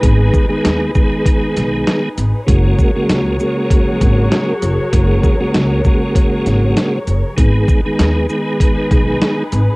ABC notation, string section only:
X:1
M:4/4
L:1/8
Q:"Swing 16ths" 1/4=98
K:G#m
V:1 name="String section"
[DGB]8 | [F,FGAc]8- | [F,FGAc]8 | [DGB]8 |]